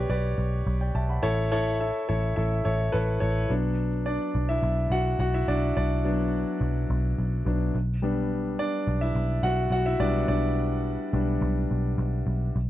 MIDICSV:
0, 0, Header, 1, 3, 480
1, 0, Start_track
1, 0, Tempo, 566038
1, 1041, Time_signature, 4, 2, 24, 8
1, 10769, End_track
2, 0, Start_track
2, 0, Title_t, "Grand piano"
2, 0, Program_c, 0, 0
2, 0, Control_c, 0, 64, 127
2, 0, Note_on_c, 0, 47, 76
2, 0, Note_on_c, 0, 67, 84
2, 0, Note_on_c, 0, 71, 80
2, 0, Note_on_c, 0, 73, 124
2, 0, Note_on_c, 0, 74, 93
2, 81, Note_off_c, 0, 74, 0
2, 81, Note_on_c, 0, 74, 97
2, 82, Note_off_c, 0, 67, 0
2, 82, Note_on_c, 0, 67, 81
2, 83, Note_off_c, 0, 71, 0
2, 83, Note_on_c, 0, 71, 78
2, 261, Note_off_c, 0, 67, 0
2, 261, Note_off_c, 0, 74, 0
2, 262, Note_off_c, 0, 71, 0
2, 687, Note_on_c, 0, 79, 65
2, 695, Note_on_c, 0, 74, 55
2, 798, Note_off_c, 0, 79, 0
2, 803, Note_off_c, 0, 74, 0
2, 805, Note_on_c, 0, 81, 80
2, 810, Note_on_c, 0, 76, 61
2, 917, Note_off_c, 0, 81, 0
2, 920, Note_off_c, 0, 76, 0
2, 927, Note_on_c, 0, 83, 67
2, 933, Note_on_c, 0, 78, 55
2, 1038, Note_on_c, 0, 64, 101
2, 1040, Note_on_c, 0, 69, 101
2, 1042, Note_off_c, 0, 73, 0
2, 1042, Note_on_c, 0, 73, 117
2, 1051, Control_c, 0, 64, 0
2, 1053, Note_off_c, 0, 47, 0
2, 1152, Note_off_c, 0, 83, 0
2, 1156, Note_off_c, 0, 78, 0
2, 1215, Control_c, 0, 64, 127
2, 1220, Note_off_c, 0, 64, 0
2, 1221, Note_off_c, 0, 69, 0
2, 1222, Note_off_c, 0, 73, 0
2, 1285, Note_on_c, 0, 69, 96
2, 1286, Note_on_c, 0, 73, 116
2, 1287, Note_on_c, 0, 64, 115
2, 1464, Note_off_c, 0, 64, 0
2, 1464, Note_off_c, 0, 69, 0
2, 1464, Note_off_c, 0, 73, 0
2, 1529, Note_on_c, 0, 69, 73
2, 1530, Note_on_c, 0, 64, 86
2, 1532, Note_on_c, 0, 76, 96
2, 1706, Note_off_c, 0, 64, 0
2, 1706, Note_off_c, 0, 69, 0
2, 1707, Note_off_c, 0, 76, 0
2, 1768, Note_on_c, 0, 64, 87
2, 1769, Note_on_c, 0, 69, 77
2, 1770, Note_on_c, 0, 73, 90
2, 1945, Note_off_c, 0, 64, 0
2, 1946, Note_off_c, 0, 69, 0
2, 1946, Note_off_c, 0, 73, 0
2, 2002, Note_on_c, 0, 76, 95
2, 2005, Note_on_c, 0, 64, 85
2, 2006, Note_on_c, 0, 69, 70
2, 2182, Note_off_c, 0, 76, 0
2, 2184, Note_off_c, 0, 64, 0
2, 2185, Note_off_c, 0, 69, 0
2, 2242, Note_on_c, 0, 64, 81
2, 2246, Note_on_c, 0, 73, 95
2, 2248, Note_on_c, 0, 69, 72
2, 2423, Note_off_c, 0, 64, 0
2, 2425, Note_off_c, 0, 69, 0
2, 2425, Note_off_c, 0, 73, 0
2, 2478, Note_on_c, 0, 69, 91
2, 2479, Note_on_c, 0, 71, 108
2, 2480, Note_on_c, 0, 64, 92
2, 2661, Note_off_c, 0, 64, 0
2, 2661, Note_off_c, 0, 69, 0
2, 2661, Note_off_c, 0, 71, 0
2, 2714, Note_on_c, 0, 64, 83
2, 2716, Note_on_c, 0, 73, 98
2, 2718, Note_on_c, 0, 69, 80
2, 2899, Note_off_c, 0, 64, 0
2, 2900, Note_off_c, 0, 73, 0
2, 2901, Note_off_c, 0, 69, 0
2, 2957, Note_on_c, 0, 54, 53
2, 2961, Note_on_c, 0, 59, 51
2, 2968, Note_on_c, 0, 62, 69
2, 2976, Control_c, 0, 64, 0
2, 3144, Control_c, 0, 64, 127
2, 3279, Note_off_c, 0, 54, 0
2, 3281, Note_off_c, 0, 59, 0
2, 3285, Note_off_c, 0, 62, 0
2, 3441, Note_on_c, 0, 74, 86
2, 3451, Note_on_c, 0, 62, 70
2, 3782, Note_off_c, 0, 62, 0
2, 3805, Note_on_c, 0, 76, 92
2, 3813, Note_off_c, 0, 74, 0
2, 3813, Note_on_c, 0, 64, 74
2, 4139, Note_off_c, 0, 76, 0
2, 4143, Note_off_c, 0, 64, 0
2, 4169, Note_on_c, 0, 78, 101
2, 4171, Note_on_c, 0, 66, 78
2, 4391, Note_off_c, 0, 66, 0
2, 4395, Note_off_c, 0, 78, 0
2, 4407, Note_on_c, 0, 78, 92
2, 4411, Note_on_c, 0, 66, 81
2, 4519, Note_off_c, 0, 66, 0
2, 4529, Note_off_c, 0, 78, 0
2, 4530, Note_on_c, 0, 64, 76
2, 4531, Note_on_c, 0, 76, 93
2, 4639, Note_off_c, 0, 64, 0
2, 4646, Note_on_c, 0, 62, 72
2, 4649, Note_on_c, 0, 74, 92
2, 4651, Note_off_c, 0, 76, 0
2, 4868, Note_off_c, 0, 62, 0
2, 4878, Note_off_c, 0, 74, 0
2, 4890, Note_on_c, 0, 62, 68
2, 4890, Note_on_c, 0, 74, 89
2, 5122, Note_off_c, 0, 62, 0
2, 5126, Note_on_c, 0, 54, 60
2, 5130, Note_on_c, 0, 59, 48
2, 5135, Note_on_c, 0, 62, 69
2, 6293, Note_off_c, 0, 74, 0
2, 6309, Note_off_c, 0, 54, 0
2, 6314, Note_off_c, 0, 59, 0
2, 6317, Note_off_c, 0, 62, 0
2, 6321, Note_on_c, 0, 54, 50
2, 6327, Note_on_c, 0, 59, 45
2, 6329, Note_on_c, 0, 62, 60
2, 6538, Note_off_c, 0, 54, 0
2, 6542, Note_off_c, 0, 59, 0
2, 6543, Note_off_c, 0, 62, 0
2, 6574, Control_c, 0, 64, 0
2, 6709, Control_c, 0, 64, 127
2, 6803, Note_on_c, 0, 55, 58
2, 6809, Note_on_c, 0, 59, 61
2, 6813, Note_on_c, 0, 62, 65
2, 7286, Note_on_c, 0, 74, 99
2, 7291, Note_off_c, 0, 62, 0
2, 7303, Note_on_c, 0, 62, 70
2, 7629, Note_off_c, 0, 62, 0
2, 7643, Note_on_c, 0, 76, 97
2, 7654, Note_on_c, 0, 64, 73
2, 7656, Note_off_c, 0, 74, 0
2, 7978, Note_off_c, 0, 76, 0
2, 7984, Note_off_c, 0, 64, 0
2, 7998, Note_on_c, 0, 78, 104
2, 8009, Note_on_c, 0, 66, 79
2, 8230, Note_off_c, 0, 66, 0
2, 8231, Note_off_c, 0, 78, 0
2, 8244, Note_on_c, 0, 78, 99
2, 8256, Note_on_c, 0, 66, 80
2, 8356, Note_off_c, 0, 78, 0
2, 8360, Note_on_c, 0, 76, 100
2, 8362, Note_off_c, 0, 66, 0
2, 8372, Note_on_c, 0, 64, 74
2, 8462, Note_off_c, 0, 55, 0
2, 8468, Note_off_c, 0, 59, 0
2, 8475, Note_on_c, 0, 55, 61
2, 8480, Note_off_c, 0, 64, 0
2, 8480, Note_on_c, 0, 59, 60
2, 8480, Note_on_c, 0, 74, 98
2, 8483, Note_on_c, 0, 62, 76
2, 8486, Note_off_c, 0, 76, 0
2, 8706, Note_off_c, 0, 74, 0
2, 8707, Note_off_c, 0, 62, 0
2, 8719, Note_on_c, 0, 74, 91
2, 8731, Note_on_c, 0, 62, 72
2, 9165, Note_off_c, 0, 55, 0
2, 9168, Note_off_c, 0, 59, 0
2, 9432, Note_off_c, 0, 62, 0
2, 9437, Note_on_c, 0, 55, 56
2, 9439, Note_on_c, 0, 59, 52
2, 9445, Note_on_c, 0, 62, 61
2, 9656, Note_off_c, 0, 55, 0
2, 9657, Note_off_c, 0, 59, 0
2, 9660, Note_off_c, 0, 62, 0
2, 10127, Note_off_c, 0, 74, 0
2, 10653, Control_c, 0, 64, 0
2, 10769, End_track
3, 0, Start_track
3, 0, Title_t, "Picked electric bass"
3, 0, Program_c, 1, 34
3, 80, Note_on_c, 1, 35, 110
3, 277, Note_off_c, 1, 35, 0
3, 321, Note_on_c, 1, 35, 98
3, 518, Note_off_c, 1, 35, 0
3, 564, Note_on_c, 1, 35, 102
3, 760, Note_off_c, 1, 35, 0
3, 803, Note_on_c, 1, 35, 100
3, 999, Note_off_c, 1, 35, 0
3, 1044, Note_on_c, 1, 33, 119
3, 1613, Note_off_c, 1, 33, 0
3, 1777, Note_on_c, 1, 33, 88
3, 1968, Note_off_c, 1, 33, 0
3, 2015, Note_on_c, 1, 33, 103
3, 2206, Note_off_c, 1, 33, 0
3, 2254, Note_on_c, 1, 33, 92
3, 2446, Note_off_c, 1, 33, 0
3, 2495, Note_on_c, 1, 33, 99
3, 2687, Note_off_c, 1, 33, 0
3, 2730, Note_on_c, 1, 33, 96
3, 2924, Note_off_c, 1, 33, 0
3, 2971, Note_on_c, 1, 35, 96
3, 3537, Note_off_c, 1, 35, 0
3, 3688, Note_on_c, 1, 35, 86
3, 3883, Note_off_c, 1, 35, 0
3, 3923, Note_on_c, 1, 35, 113
3, 4120, Note_off_c, 1, 35, 0
3, 4157, Note_on_c, 1, 35, 96
3, 4357, Note_off_c, 1, 35, 0
3, 4401, Note_on_c, 1, 35, 107
3, 4599, Note_off_c, 1, 35, 0
3, 4646, Note_on_c, 1, 35, 101
3, 4842, Note_off_c, 1, 35, 0
3, 4893, Note_on_c, 1, 35, 121
3, 5459, Note_off_c, 1, 35, 0
3, 5605, Note_on_c, 1, 35, 109
3, 5801, Note_off_c, 1, 35, 0
3, 5851, Note_on_c, 1, 35, 117
3, 6045, Note_off_c, 1, 35, 0
3, 6092, Note_on_c, 1, 35, 97
3, 6286, Note_off_c, 1, 35, 0
3, 6328, Note_on_c, 1, 35, 106
3, 6523, Note_off_c, 1, 35, 0
3, 6569, Note_on_c, 1, 35, 100
3, 7256, Note_off_c, 1, 35, 0
3, 7525, Note_on_c, 1, 35, 96
3, 7722, Note_off_c, 1, 35, 0
3, 7761, Note_on_c, 1, 35, 117
3, 7959, Note_off_c, 1, 35, 0
3, 7995, Note_on_c, 1, 35, 105
3, 8196, Note_off_c, 1, 35, 0
3, 8230, Note_on_c, 1, 35, 113
3, 8432, Note_off_c, 1, 35, 0
3, 8479, Note_on_c, 1, 35, 106
3, 8678, Note_off_c, 1, 35, 0
3, 8721, Note_on_c, 1, 35, 109
3, 9292, Note_off_c, 1, 35, 0
3, 9441, Note_on_c, 1, 35, 99
3, 9639, Note_off_c, 1, 35, 0
3, 9679, Note_on_c, 1, 35, 116
3, 9878, Note_off_c, 1, 35, 0
3, 9930, Note_on_c, 1, 35, 93
3, 10124, Note_off_c, 1, 35, 0
3, 10159, Note_on_c, 1, 35, 102
3, 10358, Note_off_c, 1, 35, 0
3, 10401, Note_on_c, 1, 35, 91
3, 10599, Note_off_c, 1, 35, 0
3, 10648, Note_on_c, 1, 35, 100
3, 10769, Note_off_c, 1, 35, 0
3, 10769, End_track
0, 0, End_of_file